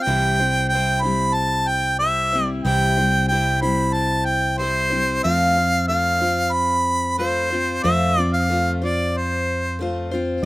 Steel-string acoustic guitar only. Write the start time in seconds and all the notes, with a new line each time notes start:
0.06 C3 E3 G3 C4 E4 C5
0.39 G3 C4 E4 C5
0.72 G3 C4 E4 C5
1.03 G3 C4 E4 C5
1.99 G3 C4 E4 C5
2.32 G3 C4 E4 C5
2.65 C3 E3 G3 C4 E4 C5
2.97 G3 C4 E4 C5
3.30 G3 C4 E4 C5
3.62 G3 C4 E4 C5
4.58 G3 C4 E4
4.62 C5
4.90 G3 C4 E4 C5
5.23 F3 A3 C4 F4 C5
5.56 C4 F4 C5
5.88 A3 C4 F4 C5
6.20 C4 F4 C5
7.18 A3 C4 F4 C5
7.50 C4 F4 C5
7.84 F3 A3 C4 F4 C5
8.16 C4 F4 C5
8.49 A3 C4 F4 C5
8.82 C4 F4 C5
9.79 A3 C4 F4 C5
10.11 C4 F4 C5